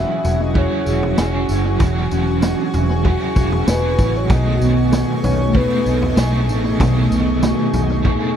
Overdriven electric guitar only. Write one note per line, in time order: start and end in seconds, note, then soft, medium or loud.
0.00 0.54 E3 medium
0.00 0.54 F#3 medium
0.00 0.56 C#4 medium
0.00 0.58 F#4 medium
0.00 0.60 G#4 medium
0.54 1.17 F#3 medium
0.54 1.19 C#4 medium
0.58 1.21 F#4 medium
0.58 1.22 G#4 medium
1.17 1.80 F#3 medium
1.17 1.82 C#4 medium
1.17 1.84 F#4 medium
1.23 1.83 G#4 medium
1.78 3.04 E3 medium
1.78 3.03 F#3 medium
1.83 3.05 C#4 medium
1.83 3.07 F#4 medium
1.87 3.09 G#4 medium
3.03 3.65 F#3 medium
3.03 3.68 C#4 medium
3.07 3.69 F#4 medium
3.07 3.71 G#4 medium
3.65 4.30 F#3 medium
3.65 4.32 C#4 medium
3.70 4.33 F#4 medium
3.70 4.33 G#4 medium
4.26 5.53 B2 medium
4.26 5.56 D#3 medium
4.30 5.52 A3 medium
4.30 5.56 B3 medium
4.30 5.56 D#4 medium
4.35 5.59 G#4 medium
5.53 6.15 A3 medium
5.53 6.18 B3 medium
5.53 6.19 D#4 medium
5.59 6.21 G#4 medium
6.16 6.80 A3 medium
6.16 6.83 B3 medium
6.16 6.84 D#4 medium
6.22 6.84 G#4 medium
6.77 8.04 B2 medium
6.77 8.06 D#3 medium
6.81 8.01 A3 medium
6.81 8.04 B3 medium
6.81 8.06 D#4 loud
6.86 8.08 G#4 loud
8.03 8.37 A3 medium
8.03 8.37 B3 medium
8.07 8.37 D#4 medium
8.07 8.37 G#4 medium